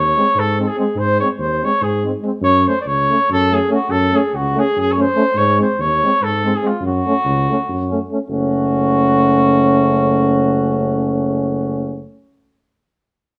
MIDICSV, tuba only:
0, 0, Header, 1, 2, 480
1, 0, Start_track
1, 0, Tempo, 418118
1, 1103, Time_signature, 7, 3, 24, 8
1, 7587, Tempo, 422833
1, 15274, End_track
2, 0, Start_track
2, 0, Title_t, "Tuba"
2, 0, Program_c, 0, 58
2, 0, Note_on_c, 0, 39, 83
2, 188, Note_off_c, 0, 39, 0
2, 399, Note_on_c, 0, 44, 94
2, 780, Note_off_c, 0, 44, 0
2, 1097, Note_on_c, 0, 44, 103
2, 1372, Note_off_c, 0, 44, 0
2, 1586, Note_on_c, 0, 39, 70
2, 1863, Note_off_c, 0, 39, 0
2, 2084, Note_on_c, 0, 44, 93
2, 2463, Note_off_c, 0, 44, 0
2, 2767, Note_on_c, 0, 42, 110
2, 3044, Note_off_c, 0, 42, 0
2, 3283, Note_on_c, 0, 37, 68
2, 3555, Note_off_c, 0, 37, 0
2, 3788, Note_on_c, 0, 42, 96
2, 4160, Note_off_c, 0, 42, 0
2, 4473, Note_on_c, 0, 42, 100
2, 4743, Note_off_c, 0, 42, 0
2, 4975, Note_on_c, 0, 37, 68
2, 5244, Note_off_c, 0, 37, 0
2, 5471, Note_on_c, 0, 42, 82
2, 5844, Note_off_c, 0, 42, 0
2, 6140, Note_on_c, 0, 44, 114
2, 6415, Note_off_c, 0, 44, 0
2, 6638, Note_on_c, 0, 39, 85
2, 6914, Note_off_c, 0, 39, 0
2, 7139, Note_on_c, 0, 44, 86
2, 7518, Note_off_c, 0, 44, 0
2, 7808, Note_on_c, 0, 42, 103
2, 8086, Note_off_c, 0, 42, 0
2, 8310, Note_on_c, 0, 37, 90
2, 8586, Note_off_c, 0, 37, 0
2, 8812, Note_on_c, 0, 42, 89
2, 9189, Note_off_c, 0, 42, 0
2, 9493, Note_on_c, 0, 30, 91
2, 13722, Note_off_c, 0, 30, 0
2, 15274, End_track
0, 0, End_of_file